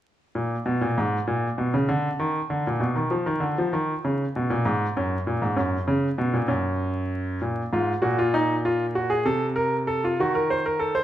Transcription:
\new Staff \with { instrumentName = "Grand piano" } { \clef bass \time 12/8 \key bes \phrygian \tempo 4. = 65 << { r8 bes,8 ces16 bes,16 aes,8 bes,8 ces16 des16 d8 ees8 d16 bes,16 ces16 ees16 f16 ees16 d16 f16 | ees8 des8 ces16 bes,16 aes,8 ges,8 bes,16 aes,16 ges,8 des8 ces16 bes,16 ges,4. | r8 f'8 ges'16 f'16 ees'8 f'8 ges'16 aes'16 a'8 bes'8 a'16 f'16 fis'16 bes'16 c''16 bes'16 a'16 c''16 | } \\ { r1. | r1. | bes,8 aes,8 bes,2 c4. ees4. | } >> }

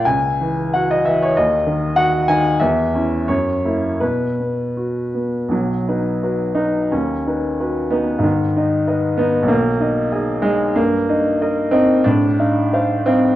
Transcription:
\new Staff \with { instrumentName = "Upright piano" } { \time 2/4 \key b \major \tempo 4 = 91 << { gis''4 fis''16 dis''16 e''16 cis''16 | dis''4 fis''8 gis''8 | e''4 cis''4 | b'4 r4 |
fis4. dis'8 | cis'4. b8 | dis4. b8 | ais4. gis8 |
\key ees \lydian bes4. c'8 | d'4. c'8 | } \\ { cis,8 e8 fis'8 e8 | dis,8 dis8 fis'8 dis8 | e,8 <cis' e'>8 fis,8 <ais e'>8 | b,8 b8 fis'8 b8 |
b,,8 <dis' b'>8 <fis' b'>8 b'8 | dis,8 <dis' b'>8 <fis' b'>8 <dis' b'>8 | gis,8 <dis' dis''>8 <b' dis''>8 <dis' dis''>8 | b,,8 <dis' dis''>8 <gis' dis''>8 <dis' dis''>8 |
g,8 <ees' ees''>8 <bes' ees''>8 <ees' ees''>8 | a,8 <ees' f''>8 <c'' f''>8 <ees' f''>8 | } >> }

